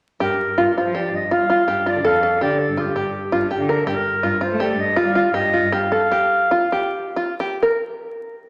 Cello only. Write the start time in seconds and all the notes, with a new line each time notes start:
0.21 G2
0.59 G2
0.85 F3
1.13 G2
1.41 G3
1.68 G2
1.95 D3
2.04 F2
2.41 D3
2.69 G2
2.96 G2
3.33 G2
3.60 D3
3.87 G2
4.23 G2
4.51 A3
4.77 G2
5.06 G3
5.34 G2
5.62 G2